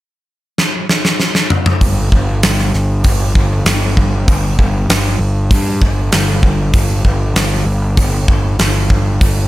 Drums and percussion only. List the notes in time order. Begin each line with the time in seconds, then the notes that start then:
0.58 snare
0.89 snare
1.05 snare
1.20 snare
1.35 snare
1.50 mid tom
1.66 mid tom
1.81 kick, open hi-hat
2.12 kick
2.43 snare, open hi-hat
2.58 snare
2.74 snare
3.04 kick, open hi-hat
3.35 kick
3.66 snare, open hi-hat
3.97 kick
4.28 kick, open hi-hat
4.59 kick
4.90 snare, open hi-hat
5.51 kick, open hi-hat
5.82 kick
6.12 snare, open hi-hat
6.43 kick
6.74 kick, open hi-hat
7.05 kick
7.36 snare, open hi-hat
7.97 kick, open hi-hat
8.28 kick
8.59 snare, open hi-hat
8.90 kick
9.21 kick, open hi-hat